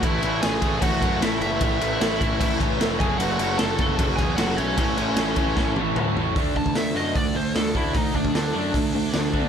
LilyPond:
<<
  \new Staff \with { instrumentName = "Lead electric guitar" } { \time 4/4 \key d \lydian \tempo 4 = 152 <e' e''>4 <gis' gis''>4 <fis' fis''>4 <e' e''>8 <e' e''>8~ | <e' e''>2~ <e' e''>8 r4 <gis' gis''>8 | <fis' fis''>4 <a' a''>4 <a' a''>8 <gis' gis''>8 <fis' fis''>8 <cis' cis''>8~ | <cis' cis''>2~ <cis' cis''>8 r4. |
r8 a''8 e''8 dis''8 d''8 c''8 a'8 e'8 | dis'8 d'8 d'2. | }
  \new Staff \with { instrumentName = "Overdriven electric guitar" } { \time 4/4 \key d \lydian <a cis' e' a' cis''>8 <a cis' e' a' cis''>8 <a cis' e' a' cis''>8 <a cis' e' a' cis''>8 <a cis' e' a' cis''>8 <a cis' e' a' cis''>8 <a cis' e' a' cis''>8 <a cis' e' a' cis''>8 | <a cis' e' a' cis''>8 <a cis' e' a' cis''>8 <a cis' e' a' cis''>8 <a cis' e' a' cis''>8 <a cis' e' a' cis''>8 <a cis' e' a' cis''>8 <a cis' e' a' cis''>8 <fis cis' fis' a' cis''>8 | <fis cis' fis' a' cis''>8 <fis cis' fis' a' cis''>8 <fis cis' fis' a' cis''>8 <fis cis' fis' a' cis''>8 <fis cis' fis' a' cis''>8 <fis cis' fis' a' cis''>8 <fis cis' fis' a' cis''>8 <fis cis' fis' a' cis''>8 | <a cis' e' a' cis''>8 <a cis' e' a' cis''>8 <a cis' e' a' cis''>8 <a cis' e' a' cis''>8 <a cis' e' a' cis''>8 <a cis' e' a' cis''>8 <a cis' e' a' cis''>8 <a cis' e' a' cis''>8 |
<d a d'>8 <d a>8 <d a>8 <d a d'>8 <d a>8 <d a>8 <d a>8 <d a d'>8 | <d a>8 <d a>8 <d a>8 <d a d'>8 <d a>8 <d a>8 <d a>8 <d a d'>8 | }
  \new Staff \with { instrumentName = "Distorted electric guitar" } { \clef bass \time 4/4 \key d \lydian <a, e a>2~ <a, e a>8 <a, e a>8 <a, e a>4 | <a, e a>2~ <a, e a>8 <a, e a>8 <a, e a>8 <fis, cis fis>8~ | <fis, cis fis>2 <fis, cis fis>8 <fis, cis fis>4 r8 | <a, e a>2~ <a, e a>8 <a, e a>8 <a, e a>4 |
<d a d'>2~ <d a d'>8 <d a d'>8 <d a d'>4 | <d a d'>2~ <d a d'>8 <d a d'>8 <d a d'>4 | }
  \new Staff \with { instrumentName = "Overdriven electric guitar" } { \clef bass \time 4/4 \key d \lydian <a, e a>8 <a, e a>8 <a, e a>8 <a, e a>8 <a, e a>8 <a, e a>8 <a, e a>8 <a, e a>8 | <a, e a>8 <a, e a>8 <a, e a>8 <a, e a>8 <a, e a>8 <a, e a>8 <a, e a>8 <fis, cis fis>8 | <fis, cis fis>8 <fis, cis fis>8 <fis, cis fis>8 <fis, cis fis>8 <fis, cis fis>8 <fis, cis fis>8 <fis, cis fis>8 <fis, cis fis>8 | <a, e a>8 <a, e a>8 <a, e a>8 <a, e a>8 <a, e a>8 <a, e a>8 <a, e a>8 <a, e a>8 |
<d a d'>8 <d a>8 <d a>8 <d a d'>8 <d a>8 <d a>8 <d a>8 <d a d'>8 | <d a>8 <d a>8 <d a>8 <d a d'>8 <d a>8 <d a>8 <d a>8 <d a d'>8 | }
  \new Staff \with { instrumentName = "Picked electric bass" } { \clef bass \time 4/4 \key d \lydian a,,8 a,,8 a,,8 a,,8 a,,8 fis,8 a,,8 fis,,8 | a,,8 a,,8 a,,8 a,,8 a,,8 a,,8 f,,8 fis,,8 | fis,,8 fis,,8 fis,,8 fis,,8 fis,,8 e,8 fis,,8 b,,8 | a,,8 a,,8 a,,8 a,,8 a,,8 a,,8 d,8 a,,8 |
d,8 d,8 d,8 fis,8 d,8 d,8 d,4 | d,8 d,8 d,8 fis,8 d,8 d,8 d,4 | }
  \new DrumStaff \with { instrumentName = "Drums" } \drummode { \time 4/4 <cymc bd>8 cymc8 <cymc sn>8 <cymc bd>8 <cymc bd>8 <cymc bd>8 <cymc sn>8 cymc8 | <cymc bd>8 cymc8 <cymc sn>8 <cymc bd>8 <cymc bd>8 <cymc bd>8 <cymc sn>8 <cymc bd>8 | cymc8 cymc8 <cymc sn>8 <cymc bd>8 <cymc bd>8 <cymc bd>8 <cymc sn>8 cymc8 | <cymc bd>8 cymc8 <cymc sn>8 <cymc bd>8 <bd sn>8 tommh8 toml8 tomfh8 |
<hho bd>8 bd16 bd16 <hho sn>4 <hho bd>4 <hho sn>8 bd8 | <hho bd>8 bd16 bd16 <hho sn>4 <hho bd>4 <hho sn>8 bd8 | }
>>